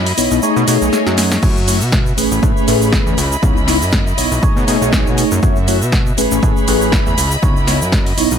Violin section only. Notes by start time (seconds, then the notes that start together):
Already playing: E4 D#5 B5
0.43 G#4 C#5
1.43 F#4 E5
2.18 G#4 C#5 B5
3.18 E4 D#5
4.43 G#4 C#5
5.43 F#4 E5
6.17 G#4 C#5 B5
7.18 E4 D#5